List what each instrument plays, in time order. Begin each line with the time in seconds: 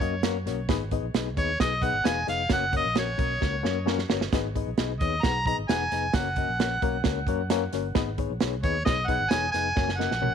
Already playing: harmonica C#5
0.00 fingered electric bass F#2, reed electric piano A#3 C#4 F#4 A#4 D#5, kick, closed hi-hat
0.23 reed electric piano A#3 C#4 F#4 A#4 C#5, snare, closed hi-hat
0.46 fingered electric bass B1, reed electric piano A#3 C#4 F#4 A#4 C#5, snare, closed hi-hat
0.69 fingered electric bass G#1, reed electric piano B3 D#4 G#4 B4 D#5, kick, snare, closed hi-hat
0.91 reed electric piano B3 D#4 G#4 B4 D#5, kick, closed hi-hat
1.03 fingered electric bass A#1
1.14 fingered electric bass B1, reed electric piano B3 D#4 G#4 B4 D#5, snare, closed hi-hat
1.37 fingered electric bass D#2, reed electric piano B3 D#4 G#4 B4 D#5, harmonica C#5, kick, closed hi-hat
1.60 fingered electric bass B1, reed electric piano B3 D#4 G#4 B4 D#5, harmonica D#5, kick, snare, closed hi-hat
1.82 reed electric piano B3 D#4 G#4 B4 D#5, harmonica F#5, kick, closed hi-hat
1.93 fingered electric bass G#1
2.04 fingered electric bass E1, reed electric piano B3 D#4 G#4 B4 F5, harmonica G#5, snare, closed hi-hat
2.27 fingered electric bass F1, reed electric piano B3 D#4 G#4 B4 D#5, harmonica F5, snare, closed hi-hat
2.49 fingered electric bass F#1, reed electric piano A#3 C#4 F#4 A#4 C#5, harmonica F#5, kick, snare, closed hi-hat
2.72 reed electric piano A#3 C#4 F#4 A#4 C#5, kick, closed hi-hat
2.77 harmonica D#5
2.85 fingered electric bass A#1
2.94 reed electric piano A#3 C#4 F#4 A#4 C#5, snare, closed hi-hat
2.99 harmonica C#5
3.18 fingered electric bass B1, reed electric piano A#3 C#4 F#4 A#4 C#5, kick, closed hi-hat
3.41 fingered electric bass C#2, reed electric piano A#3 C#4 F#4 A#4 C#5, kick, snare
3.63 fingered electric bass F#2, reed electric piano A#3 C#4 F#4 A#4 C#5, snare
3.86 reed electric piano A#3 C#4 F#4 A#4 C#5, snare
3.98 snare
4.09 fingered electric bass G1, reed electric piano A#3 C#4 F#4 A#4 C#5, snare
4.21 snare
4.33 fingered electric bass G#1, reed electric piano B3 D#4 G#4 B4 D#5, kick, snare, closed hi-hat
4.55 reed electric piano B3 D#4 G#4 B4 D#5, kick, closed hi-hat
4.67 fingered electric bass A#1
4.78 fingered electric bass B1, reed electric piano B3 D#4 G#4 B4 D#5, snare, closed hi-hat
5.00 fingered electric bass D#2, reed electric piano B3 D#4 G#4 B4 C#5, harmonica D#5, kick, closed hi-hat
5.23 fingered electric bass B1, reed electric piano B3 D#4 G#4 B4 F#5, harmonica A#5, kick, snare, closed hi-hat
5.46 reed electric piano B3 D#4 G#4 B4 D#5, harmonica A#5, kick, closed hi-hat
5.58 fingered electric bass G#1
5.69 fingered electric bass E1, reed electric piano B3 D#4 G#4 B4 F#5, harmonica G#5, snare, closed hi-hat
5.92 fingered electric bass F1, reed electric piano B3 D#4 G#4 B4 D#5, snare, closed hi-hat
6.13 fingered electric bass F#1, reed electric piano A#3 C#4 F#4 A#4 C#5, harmonica F#5, kick, snare, closed hi-hat
6.36 reed electric piano A#3 C#4 F#4 A#4 D#5, kick, closed hi-hat
6.49 fingered electric bass A#1
6.59 reed electric piano A#3 C#4 F#4 A#4 C#5, snare, closed hi-hat
6.82 fingered electric bass B1, reed electric piano A#3 C#4 F#4 A#4 C#5, kick, closed hi-hat
7.04 fingered electric bass C#2, reed electric piano A#3 C#4 F#4 A#4 C#5, kick, snare, closed hi-hat
7.27 fingered electric bass F#2, reed electric piano A#3 C#4 F#4 A#4 C#5, kick, closed hi-hat
7.50 reed electric piano A#3 C#4 F#4 A#4 C#5, snare, closed hi-hat
7.73 fingered electric bass G1, reed electric piano A#3 C#4 F#4 A#4 C#5, snare, closed hi-hat
7.95 fingered electric bass G#1, reed electric piano B3 D#4 G#4 B4 D#5, kick, snare, closed hi-hat
8.18 reed electric piano B3 D#4 G#4 B4 C#5, kick, closed hi-hat
8.30 fingered electric bass A#1
8.40 fingered electric bass B1, reed electric piano B3 D#4 G#4 B4 C#5, snare, closed hi-hat
8.63 fingered electric bass D#2, reed electric piano B3 D#4 G#4 B4 D#5, harmonica C#5, kick, closed hi-hat
8.85 fingered electric bass B1, reed electric piano B3 D#4 G#4 B4 C#5, harmonica D#5, kick, snare, closed hi-hat
9.07 reed electric piano B3 D#4 G#4 B4 D#5, harmonica F#5, kick, closed hi-hat
9.20 fingered electric bass G#1
9.30 fingered electric bass E1, reed electric piano B3 D#4 G#4 B4 C#5, harmonica G#5, snare, closed hi-hat
9.52 fingered electric bass F1, reed electric piano B3 D#4 G#4 B4 D#5, harmonica G#5, snare, closed hi-hat
9.76 fingered electric bass F#1, reed electric piano A#3 C#4 F#4 A#4 C#5, kick, snare
9.89 harmonica G#5, snare
9.97 reed electric piano A#3 C#4 F#4 A#4 D#5, harmonica F#5, snare
10.11 fingered electric bass A#1, snare
10.21 reed electric piano A#3 C#4 F#4 A#4 C#5, high tom